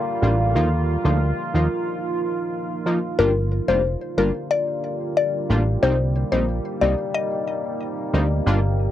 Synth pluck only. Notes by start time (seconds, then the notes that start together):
3.19 A#4
3.68 C5
4.18 A#4
4.51 D5
5.17 D5
5.83 C5
6.32 C5
6.81 D5
7.14 D#5